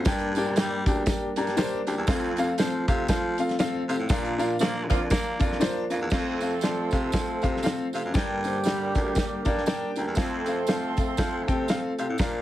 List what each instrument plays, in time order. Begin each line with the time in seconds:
0.05 baritone saxophone G2, grand piano G2 D4 G4 A#4 G5, tonewheel organ G3 A#3 D4 G4, kick, snare, closed hi-hat, tambourine
0.19 closed hi-hat
0.35 grand piano D4 G4 A#4 G5, closed hi-hat, tambourine
0.56 baritone saxophone G3, grand piano D4 G4 A#4 G5, snare, closed hi-hat, tambourine
0.86 baritone saxophone D2, grand piano D4 G4 A#4 G5, kick, closed hi-hat, tambourine
1.06 grand piano D4 G4 A#4 G5, kick, snare, closed hi-hat, tambourine
1.22 baritone saxophone G2
1.36 baritone saxophone G2, grand piano D4 G4 A#4 A#5, closed hi-hat, tambourine
1.47 snare, closed hi-hat
1.57 grand piano D4 G4 A#4 C5, snare, closed hi-hat, tambourine
1.87 baritone saxophone D2, grand piano D4 G4 A#4 G5, closed hi-hat, tambourine
1.97 baritone saxophone E2
2.06 baritone saxophone F2, tonewheel organ F3 A3 C4 F4, grand piano C4 F4 A4 F5, kick, snare, closed hi-hat, tambourine
2.37 grand piano C4 F4 A4 F5, closed hi-hat, tambourine
2.58 baritone saxophone F3, grand piano C4 F4 A4 C5, snare, closed hi-hat, tambourine
2.88 baritone saxophone C3, grand piano C4 F4 A4 F5, kick, closed hi-hat, tambourine
3.08 baritone saxophone F3, grand piano C4 F4 A4 F5, kick, snare, closed hi-hat, tambourine
3.38 grand piano C4 F4 A4 F5, closed hi-hat, tambourine
3.49 snare, closed hi-hat
3.59 grand piano C4 F4 A4 F5, snare, closed hi-hat, tambourine
3.89 baritone saxophone C3, grand piano C4 F4 A4 F5, closed hi-hat, tambourine
3.99 baritone saxophone A2
4.08 baritone saxophone A#2, grand piano A#2 D4 F4 A#4 F5, tonewheel organ F3 A#3 D4, kick, snare, closed hi-hat, tambourine
4.25 closed hi-hat
4.38 grand piano D4 F4 A#4 F5, closed hi-hat, tambourine
4.59 horn section D3 F3 A#3 F4, baritone saxophone A#3, grand piano D4 F4 A#4 F5, snare, closed hi-hat, tambourine
4.89 baritone saxophone F2, horn section D3 F3 A#3 F4, grand piano D4 F4 A#4 F5, kick, closed hi-hat, tambourine
5.10 baritone saxophone A#3, grand piano D4 F4 A#4 F5, kick, snare, closed hi-hat, tambourine
5.39 baritone saxophone F2, grand piano D4 F4 A#4 F5, kick, closed hi-hat, tambourine
5.52 snare
5.60 grand piano D4 F4 A#4 C5, snare, closed hi-hat, tambourine
5.90 baritone saxophone F2, grand piano D4 F4 A#4 F5, closed hi-hat, tambourine
6.01 baritone saxophone E2
6.10 baritone saxophone F2, horn section F3 A3 C4 A4, tonewheel organ F3 A3 C4 F4, grand piano C4 A4 F5, kick, snare, crash, tambourine
6.41 grand piano C4 A4 F5, closed hi-hat, tambourine
6.61 baritone saxophone F3, grand piano C4 A4 D5, snare, closed hi-hat, tambourine
6.91 baritone saxophone C3, grand piano C4 A4 F5, kick, closed hi-hat, tambourine
7.12 baritone saxophone F3, grand piano C4 A4 F5, kick, snare, closed hi-hat, tambourine
7.42 baritone saxophone C3, grand piano C4 A4 F5, kick, closed hi-hat, tambourine
7.56 snare
7.62 grand piano C4 A4 F5, snare, closed hi-hat, tambourine
7.93 baritone saxophone C3, grand piano C4 A4 F5, closed hi-hat, tambourine
8.05 baritone saxophone F#2
8.13 grand piano G2 D4 A#4 G5, baritone saxophone G2, horn section D3 G3 A#3 G4, tonewheel organ G3 A#3 D4 G4, kick, snare, closed hi-hat, tambourine
8.44 grand piano D4 A#4 C5, closed hi-hat, tambourine
8.64 baritone saxophone G3, grand piano D4 A#4 G5, snare, closed hi-hat, tambourine
8.95 baritone saxophone D2, grand piano D4 A#4 G5, kick, closed hi-hat, tambourine
9.15 grand piano D4 A#4 G5, kick, snare, closed hi-hat, tambourine
9.32 baritone saxophone G2
9.45 baritone saxophone G2, grand piano D4 A#4 D5 F5, kick, closed hi-hat, tambourine
9.58 snare
9.66 grand piano D4 A#4 G5, snare, closed hi-hat, tambourine
9.96 baritone saxophone D2, grand piano D4 A#4 G5 A#5, closed hi-hat, tambourine
10.07 baritone saxophone E2
10.15 baritone saxophone F2, horn section F3 A3 C4 A4, tonewheel organ A3 C4 F4 A4, grand piano C4 A4 F5, kick, snare, closed hi-hat, tambourine
10.46 grand piano C4 A4 F5, closed hi-hat, tambourine
10.67 baritone saxophone F3, grand piano C4 A4 F5, snare, closed hi-hat, tambourine
10.97 grand piano C4 A4 F5, kick, closed hi-hat, tambourine
11.17 baritone saxophone F3, grand piano C4 A4 F5, kick, snare, closed hi-hat, tambourine
11.48 baritone saxophone C3, grand piano C4 A4 G5, kick, closed hi-hat, tambourine
11.68 grand piano C4 A4 F5, snare, closed hi-hat, tambourine
11.98 baritone saxophone C3, grand piano C4 A4 F5, closed hi-hat, tambourine
12.09 baritone saxophone A2
12.18 baritone saxophone A#2, grand piano A#2 D4 A#4 F5, horn section F3 A#3 D4 A#4, tonewheel organ D4, kick, snare, closed hi-hat, tambourine